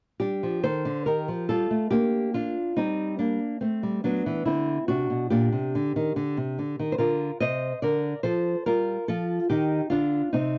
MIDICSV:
0, 0, Header, 1, 2, 480
1, 0, Start_track
1, 0, Key_signature, -2, "minor"
1, 0, Tempo, 852273
1, 115, Time_signature, 4, 2, 24, 8
1, 3474, Tempo, 831025
1, 6023, End_track
2, 0, Start_track
2, 0, Title_t, "Nylon-string guitar"
2, 0, Program_c, 0, 24
2, 110, Note_on_c, 0, 67, 67
2, 117, Note_on_c, 0, 55, 52
2, 120, Note_on_c, 0, 62, 47
2, 231, Note_off_c, 0, 55, 0
2, 242, Note_on_c, 0, 53, 55
2, 342, Note_off_c, 0, 62, 0
2, 345, Note_off_c, 0, 67, 0
2, 354, Note_off_c, 0, 53, 0
2, 358, Note_on_c, 0, 72, 88
2, 361, Note_on_c, 0, 51, 65
2, 365, Note_on_c, 0, 69, 65
2, 474, Note_off_c, 0, 51, 0
2, 480, Note_on_c, 0, 50, 62
2, 584, Note_off_c, 0, 69, 0
2, 588, Note_off_c, 0, 72, 0
2, 593, Note_off_c, 0, 50, 0
2, 597, Note_on_c, 0, 70, 68
2, 604, Note_on_c, 0, 51, 64
2, 605, Note_on_c, 0, 67, 51
2, 716, Note_off_c, 0, 51, 0
2, 722, Note_on_c, 0, 53, 60
2, 825, Note_off_c, 0, 67, 0
2, 829, Note_off_c, 0, 70, 0
2, 835, Note_off_c, 0, 53, 0
2, 838, Note_on_c, 0, 69, 83
2, 843, Note_on_c, 0, 55, 57
2, 845, Note_on_c, 0, 65, 58
2, 957, Note_off_c, 0, 55, 0
2, 961, Note_on_c, 0, 57, 61
2, 1067, Note_off_c, 0, 65, 0
2, 1071, Note_off_c, 0, 69, 0
2, 1073, Note_on_c, 0, 67, 82
2, 1076, Note_off_c, 0, 57, 0
2, 1079, Note_on_c, 0, 58, 64
2, 1082, Note_on_c, 0, 62, 59
2, 1306, Note_off_c, 0, 62, 0
2, 1309, Note_off_c, 0, 67, 0
2, 1319, Note_on_c, 0, 65, 79
2, 1323, Note_on_c, 0, 62, 59
2, 1426, Note_off_c, 0, 58, 0
2, 1546, Note_off_c, 0, 62, 0
2, 1551, Note_off_c, 0, 65, 0
2, 1558, Note_on_c, 0, 63, 78
2, 1562, Note_on_c, 0, 55, 59
2, 1565, Note_on_c, 0, 60, 55
2, 1785, Note_off_c, 0, 60, 0
2, 1789, Note_off_c, 0, 63, 0
2, 1795, Note_on_c, 0, 62, 68
2, 1802, Note_on_c, 0, 58, 55
2, 1905, Note_off_c, 0, 55, 0
2, 2023, Note_off_c, 0, 58, 0
2, 2027, Note_off_c, 0, 62, 0
2, 2032, Note_on_c, 0, 60, 58
2, 2040, Note_on_c, 0, 57, 49
2, 2157, Note_on_c, 0, 55, 53
2, 2260, Note_off_c, 0, 57, 0
2, 2263, Note_off_c, 0, 60, 0
2, 2270, Note_off_c, 0, 55, 0
2, 2275, Note_on_c, 0, 62, 72
2, 2279, Note_on_c, 0, 54, 63
2, 2282, Note_on_c, 0, 59, 56
2, 2391, Note_off_c, 0, 54, 0
2, 2401, Note_on_c, 0, 52, 63
2, 2500, Note_off_c, 0, 59, 0
2, 2504, Note_off_c, 0, 62, 0
2, 2509, Note_on_c, 0, 64, 69
2, 2511, Note_off_c, 0, 52, 0
2, 2517, Note_on_c, 0, 50, 63
2, 2520, Note_on_c, 0, 60, 56
2, 2688, Note_off_c, 0, 50, 0
2, 2740, Note_off_c, 0, 60, 0
2, 2741, Note_off_c, 0, 64, 0
2, 2749, Note_on_c, 0, 66, 80
2, 2754, Note_on_c, 0, 48, 57
2, 2757, Note_on_c, 0, 62, 58
2, 2868, Note_off_c, 0, 48, 0
2, 2872, Note_on_c, 0, 47, 53
2, 2979, Note_off_c, 0, 62, 0
2, 2982, Note_off_c, 0, 66, 0
2, 2987, Note_on_c, 0, 67, 83
2, 2988, Note_off_c, 0, 47, 0
2, 2992, Note_on_c, 0, 46, 69
2, 2995, Note_on_c, 0, 62, 63
2, 3108, Note_off_c, 0, 46, 0
2, 3111, Note_on_c, 0, 48, 60
2, 3228, Note_off_c, 0, 48, 0
2, 3239, Note_on_c, 0, 50, 65
2, 3352, Note_off_c, 0, 50, 0
2, 3357, Note_on_c, 0, 51, 59
2, 3468, Note_off_c, 0, 51, 0
2, 3470, Note_on_c, 0, 50, 67
2, 3587, Note_off_c, 0, 50, 0
2, 3592, Note_on_c, 0, 48, 57
2, 3708, Note_off_c, 0, 48, 0
2, 3716, Note_on_c, 0, 50, 54
2, 3830, Note_off_c, 0, 50, 0
2, 3835, Note_on_c, 0, 51, 55
2, 3890, Note_off_c, 0, 67, 0
2, 3893, Note_off_c, 0, 62, 0
2, 3909, Note_on_c, 0, 72, 62
2, 3942, Note_off_c, 0, 72, 0
2, 3945, Note_on_c, 0, 70, 66
2, 3947, Note_off_c, 0, 51, 0
2, 3949, Note_on_c, 0, 50, 59
2, 3951, Note_on_c, 0, 65, 54
2, 4126, Note_off_c, 0, 50, 0
2, 4178, Note_off_c, 0, 65, 0
2, 4183, Note_off_c, 0, 70, 0
2, 4188, Note_on_c, 0, 75, 90
2, 4193, Note_on_c, 0, 48, 62
2, 4196, Note_on_c, 0, 72, 64
2, 4368, Note_off_c, 0, 48, 0
2, 4420, Note_off_c, 0, 72, 0
2, 4423, Note_off_c, 0, 75, 0
2, 4429, Note_on_c, 0, 74, 70
2, 4433, Note_on_c, 0, 50, 65
2, 4436, Note_on_c, 0, 70, 54
2, 4607, Note_off_c, 0, 50, 0
2, 4658, Note_off_c, 0, 70, 0
2, 4663, Note_off_c, 0, 74, 0
2, 4666, Note_on_c, 0, 72, 86
2, 4671, Note_on_c, 0, 53, 65
2, 4675, Note_on_c, 0, 69, 63
2, 4847, Note_off_c, 0, 53, 0
2, 4899, Note_off_c, 0, 69, 0
2, 4902, Note_off_c, 0, 72, 0
2, 4914, Note_on_c, 0, 70, 88
2, 4917, Note_on_c, 0, 55, 65
2, 4921, Note_on_c, 0, 65, 58
2, 5090, Note_off_c, 0, 55, 0
2, 5142, Note_off_c, 0, 65, 0
2, 5146, Note_off_c, 0, 70, 0
2, 5157, Note_on_c, 0, 69, 85
2, 5162, Note_on_c, 0, 53, 69
2, 5164, Note_on_c, 0, 65, 71
2, 5331, Note_off_c, 0, 53, 0
2, 5382, Note_off_c, 0, 65, 0
2, 5385, Note_off_c, 0, 69, 0
2, 5396, Note_on_c, 0, 67, 77
2, 5401, Note_on_c, 0, 51, 71
2, 5404, Note_on_c, 0, 63, 62
2, 5571, Note_off_c, 0, 51, 0
2, 5621, Note_off_c, 0, 63, 0
2, 5624, Note_off_c, 0, 67, 0
2, 5628, Note_on_c, 0, 65, 82
2, 5636, Note_on_c, 0, 50, 55
2, 5640, Note_on_c, 0, 62, 61
2, 5809, Note_off_c, 0, 50, 0
2, 5861, Note_off_c, 0, 62, 0
2, 5863, Note_off_c, 0, 65, 0
2, 5876, Note_on_c, 0, 63, 66
2, 5881, Note_on_c, 0, 48, 64
2, 5883, Note_on_c, 0, 60, 54
2, 6023, Note_off_c, 0, 48, 0
2, 6023, Note_off_c, 0, 60, 0
2, 6023, Note_off_c, 0, 63, 0
2, 6023, End_track
0, 0, End_of_file